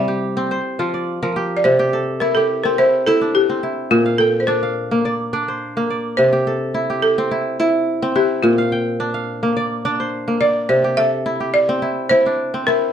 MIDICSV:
0, 0, Header, 1, 3, 480
1, 0, Start_track
1, 0, Tempo, 566038
1, 1390, Time_signature, 4, 2, 24, 8
1, 10960, End_track
2, 0, Start_track
2, 0, Title_t, "Balafon"
2, 0, Program_c, 0, 12
2, 0, Note_on_c, 0, 76, 74
2, 396, Note_off_c, 0, 76, 0
2, 1328, Note_on_c, 0, 74, 63
2, 1387, Note_off_c, 0, 74, 0
2, 1392, Note_on_c, 0, 72, 87
2, 1868, Note_on_c, 0, 70, 80
2, 1887, Note_off_c, 0, 72, 0
2, 1990, Note_on_c, 0, 69, 78
2, 1998, Note_off_c, 0, 70, 0
2, 2235, Note_on_c, 0, 70, 79
2, 2241, Note_off_c, 0, 69, 0
2, 2356, Note_off_c, 0, 70, 0
2, 2361, Note_on_c, 0, 72, 88
2, 2599, Note_on_c, 0, 69, 82
2, 2604, Note_off_c, 0, 72, 0
2, 2839, Note_on_c, 0, 67, 79
2, 2844, Note_off_c, 0, 69, 0
2, 3315, Note_on_c, 0, 65, 80
2, 3332, Note_off_c, 0, 67, 0
2, 3548, Note_on_c, 0, 69, 81
2, 3563, Note_off_c, 0, 65, 0
2, 3732, Note_on_c, 0, 72, 50
2, 3741, Note_off_c, 0, 69, 0
2, 3791, Note_on_c, 0, 70, 79
2, 3792, Note_off_c, 0, 72, 0
2, 4720, Note_off_c, 0, 70, 0
2, 5233, Note_on_c, 0, 72, 85
2, 5956, Note_on_c, 0, 69, 77
2, 5976, Note_off_c, 0, 72, 0
2, 6917, Note_on_c, 0, 67, 74
2, 6944, Note_off_c, 0, 69, 0
2, 7145, Note_on_c, 0, 65, 74
2, 7163, Note_off_c, 0, 67, 0
2, 8793, Note_off_c, 0, 65, 0
2, 8825, Note_on_c, 0, 74, 87
2, 9065, Note_on_c, 0, 72, 76
2, 9075, Note_off_c, 0, 74, 0
2, 9304, Note_on_c, 0, 76, 105
2, 9315, Note_off_c, 0, 72, 0
2, 9783, Note_on_c, 0, 74, 91
2, 9801, Note_off_c, 0, 76, 0
2, 10232, Note_off_c, 0, 74, 0
2, 10256, Note_on_c, 0, 72, 88
2, 10742, Note_on_c, 0, 70, 86
2, 10756, Note_off_c, 0, 72, 0
2, 10960, Note_off_c, 0, 70, 0
2, 10960, End_track
3, 0, Start_track
3, 0, Title_t, "Kora"
3, 0, Program_c, 1, 46
3, 0, Note_on_c, 1, 48, 78
3, 0, Note_on_c, 1, 55, 69
3, 0, Note_on_c, 1, 60, 59
3, 0, Note_on_c, 1, 64, 62
3, 0, Note_on_c, 1, 72, 64
3, 67, Note_on_c, 1, 67, 61
3, 238, Note_off_c, 1, 72, 0
3, 308, Note_off_c, 1, 60, 0
3, 312, Note_on_c, 1, 60, 77
3, 433, Note_on_c, 1, 72, 71
3, 470, Note_off_c, 1, 48, 0
3, 470, Note_off_c, 1, 55, 0
3, 671, Note_on_c, 1, 53, 76
3, 673, Note_on_c, 1, 65, 66
3, 722, Note_off_c, 1, 64, 0
3, 796, Note_on_c, 1, 74, 53
3, 1030, Note_off_c, 1, 53, 0
3, 1039, Note_on_c, 1, 70, 60
3, 1040, Note_on_c, 1, 53, 69
3, 1151, Note_off_c, 1, 67, 0
3, 1154, Note_on_c, 1, 67, 66
3, 1398, Note_on_c, 1, 48, 76
3, 1433, Note_off_c, 1, 53, 0
3, 1440, Note_off_c, 1, 72, 0
3, 1517, Note_off_c, 1, 67, 0
3, 1520, Note_on_c, 1, 67, 67
3, 1638, Note_on_c, 1, 69, 60
3, 1689, Note_off_c, 1, 70, 0
3, 1736, Note_off_c, 1, 74, 0
3, 1838, Note_off_c, 1, 60, 0
3, 1877, Note_on_c, 1, 64, 76
3, 1928, Note_off_c, 1, 65, 0
3, 2003, Note_off_c, 1, 67, 0
3, 2006, Note_on_c, 1, 67, 59
3, 2249, Note_on_c, 1, 60, 79
3, 2360, Note_off_c, 1, 64, 0
3, 2364, Note_on_c, 1, 64, 68
3, 2603, Note_off_c, 1, 64, 0
3, 2606, Note_on_c, 1, 64, 80
3, 2608, Note_off_c, 1, 64, 0
3, 2608, Note_on_c, 1, 64, 67
3, 2725, Note_on_c, 1, 62, 57
3, 2755, Note_off_c, 1, 69, 0
3, 2960, Note_off_c, 1, 60, 0
3, 2964, Note_on_c, 1, 60, 63
3, 3077, Note_off_c, 1, 64, 0
3, 3080, Note_on_c, 1, 64, 59
3, 3204, Note_off_c, 1, 67, 0
3, 3315, Note_on_c, 1, 46, 77
3, 3357, Note_off_c, 1, 48, 0
3, 3440, Note_on_c, 1, 77, 60
3, 3490, Note_off_c, 1, 64, 0
3, 3563, Note_on_c, 1, 79, 61
3, 3793, Note_off_c, 1, 62, 0
3, 3797, Note_on_c, 1, 62, 70
3, 3921, Note_off_c, 1, 77, 0
3, 3924, Note_on_c, 1, 77, 59
3, 4167, Note_on_c, 1, 58, 70
3, 4283, Note_on_c, 1, 74, 66
3, 4353, Note_off_c, 1, 79, 0
3, 4490, Note_off_c, 1, 60, 0
3, 4517, Note_off_c, 1, 62, 0
3, 4519, Note_off_c, 1, 74, 0
3, 4520, Note_on_c, 1, 62, 75
3, 4522, Note_on_c, 1, 74, 62
3, 4650, Note_on_c, 1, 72, 57
3, 4771, Note_off_c, 1, 77, 0
3, 4888, Note_off_c, 1, 58, 0
3, 4891, Note_on_c, 1, 58, 70
3, 5003, Note_off_c, 1, 74, 0
3, 5006, Note_on_c, 1, 74, 58
3, 5244, Note_on_c, 1, 48, 77
3, 5279, Note_off_c, 1, 46, 0
3, 5365, Note_on_c, 1, 67, 65
3, 5486, Note_on_c, 1, 69, 62
3, 5537, Note_off_c, 1, 58, 0
3, 5657, Note_off_c, 1, 72, 0
3, 5719, Note_on_c, 1, 64, 72
3, 5846, Note_off_c, 1, 67, 0
3, 5849, Note_on_c, 1, 67, 59
3, 5944, Note_off_c, 1, 62, 0
3, 5946, Note_off_c, 1, 74, 0
3, 6089, Note_on_c, 1, 60, 76
3, 6198, Note_off_c, 1, 64, 0
3, 6202, Note_on_c, 1, 64, 69
3, 6439, Note_off_c, 1, 64, 0
3, 6442, Note_on_c, 1, 64, 66
3, 6445, Note_off_c, 1, 64, 0
3, 6445, Note_on_c, 1, 64, 81
3, 6603, Note_off_c, 1, 69, 0
3, 6801, Note_off_c, 1, 60, 0
3, 6805, Note_on_c, 1, 60, 78
3, 6912, Note_off_c, 1, 64, 0
3, 6916, Note_on_c, 1, 64, 64
3, 7047, Note_off_c, 1, 67, 0
3, 7152, Note_on_c, 1, 46, 77
3, 7198, Note_off_c, 1, 48, 0
3, 7277, Note_on_c, 1, 77, 64
3, 7327, Note_off_c, 1, 64, 0
3, 7395, Note_on_c, 1, 79, 59
3, 7631, Note_on_c, 1, 62, 77
3, 7748, Note_off_c, 1, 77, 0
3, 7752, Note_on_c, 1, 77, 61
3, 7995, Note_on_c, 1, 58, 68
3, 8112, Note_on_c, 1, 74, 69
3, 8185, Note_off_c, 1, 79, 0
3, 8331, Note_off_c, 1, 60, 0
3, 8349, Note_off_c, 1, 62, 0
3, 8350, Note_off_c, 1, 74, 0
3, 8353, Note_on_c, 1, 62, 79
3, 8354, Note_on_c, 1, 74, 61
3, 8479, Note_on_c, 1, 72, 56
3, 8599, Note_off_c, 1, 77, 0
3, 8711, Note_off_c, 1, 58, 0
3, 8714, Note_on_c, 1, 58, 65
3, 8822, Note_off_c, 1, 74, 0
3, 8825, Note_on_c, 1, 74, 60
3, 9066, Note_on_c, 1, 48, 73
3, 9114, Note_off_c, 1, 46, 0
3, 9194, Note_on_c, 1, 67, 61
3, 9304, Note_on_c, 1, 69, 57
3, 9355, Note_off_c, 1, 58, 0
3, 9486, Note_off_c, 1, 72, 0
3, 9547, Note_on_c, 1, 64, 70
3, 9667, Note_off_c, 1, 67, 0
3, 9671, Note_on_c, 1, 67, 53
3, 9765, Note_off_c, 1, 74, 0
3, 9777, Note_off_c, 1, 62, 0
3, 9912, Note_on_c, 1, 60, 81
3, 10021, Note_off_c, 1, 64, 0
3, 10025, Note_on_c, 1, 64, 63
3, 10263, Note_off_c, 1, 64, 0
3, 10266, Note_on_c, 1, 64, 80
3, 10270, Note_off_c, 1, 64, 0
3, 10270, Note_on_c, 1, 64, 63
3, 10399, Note_on_c, 1, 62, 55
3, 10421, Note_off_c, 1, 69, 0
3, 10630, Note_off_c, 1, 60, 0
3, 10633, Note_on_c, 1, 60, 69
3, 10748, Note_off_c, 1, 64, 0
3, 10751, Note_on_c, 1, 64, 66
3, 10868, Note_off_c, 1, 67, 0
3, 10960, Note_off_c, 1, 48, 0
3, 10960, Note_off_c, 1, 60, 0
3, 10960, Note_off_c, 1, 62, 0
3, 10960, Note_off_c, 1, 64, 0
3, 10960, End_track
0, 0, End_of_file